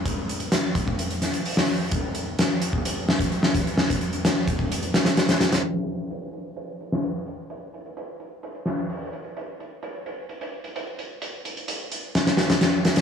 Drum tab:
HH |x-xxx-x-xxxxo---|x-x-x-x-x--xx-xx|-xxxx-x-xxxxxxxx|x-x-x-x-x-x-x-x-|
SD |----o-----o--o--|----o-----o--o--|o---o-----oooooo|-----------o----|
BD |o-----oo--------|o------o---o--o-|-o----oo--------|----------------|

HH |x-xxx-x-xxxxo-xx|x-x-x-x-xx-xx-x-|x-xxx-x-xxxxx-xx|
SD |----------o-----|----------------|--------ooooo-oo|
BD |----------------|----------------|----------------|